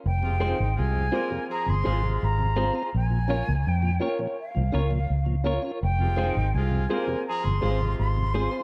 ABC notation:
X:1
M:4/4
L:1/16
Q:1/4=83
K:Fm
V:1 name="Flute"
g4 a4 b c'3 b4 | a4 g3 z f6 z2 | g4 a4 b c'3 c'4 |]
V:2 name="Clean electric guitar"
z2 [FAc] z3 [FAc] z3 [FAc] z3 [FAc] [FAc] | z2 [FBd] z3 [FBd] z3 [FBd] z3 [FBd] [FBd] | z2 [FAc] z3 [FAc] z3 [FAc] z3 [FAc] [FAc] |]
V:3 name="Upright piano"
z2 [CFAc] z3 [CFAc] [CFAc] z2 [CFAc] [Ac] z2 [CFAc] z | z2 [DFBd] z3 [DFBd] [DFBd] z2 [DFBd] [Bd] z2 [DFBd] z | z2 [CFAc] z3 [CFAc] [CFAc] z2 [CFAc] z3 [CFAc] z |]
V:4 name="Horn section"
z [C,A,F] [E,CE]2 [C,A,F]2 [G,B,B]2 [F,CA]2 [C,A,F]4 z2 | z16 | z [C,A,F] [E,CE]2 [C,A,F]2 [G,B,B]2 [F,CA]2 [C,A,F]4 z2 |]
V:5 name="Tonewheel organ" clef=bass
z [F,,C,] [A,CF] [F,,C,] z [F,,C,] [A,CF] [F,,C,] z [F,,C,] [A,CF] [F,,C,] z [F,,C,] [A,CF] [CF] | z [B,,F,] [B,DF] [B,,F,] z [B,,F,] [B,DF] [B,,F,] z [B,,F,] [B,DF] [B,,F,] z [B,,F,] [B,DF] [DF] | z [F,,C,] [A,CF] [F,,C,] z [F,,C,] [A,CF] [F,,C,] z [F,,C,] [A,CF] [F,,C,] z [F,,C,] [A,CF] [CF] |]
V:6 name="Fingered electric bass" clef=bass
F,,,3 A,,, C,,2 z3 G,,, A,,,2 A,,,3 z | B,,,3 D,, F,,2 z3 C,, D,,2 D,,3 z | F,,,3 A,,, C,,2 z3 G,,, A,,,2 A,,,3 z |]